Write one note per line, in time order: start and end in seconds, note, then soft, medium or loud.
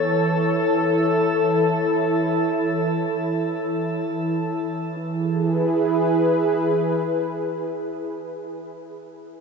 0.00 4.77 E3 medium
0.00 4.80 E4 medium
0.00 4.80 A4 medium
0.00 4.82 A4 medium
0.00 4.81 C#5 medium
0.00 4.82 A5 medium
4.78 8.83 E3 medium
4.96 8.84 E4 medium
5.14 8.84 G#4 medium
5.31 8.85 B4 medium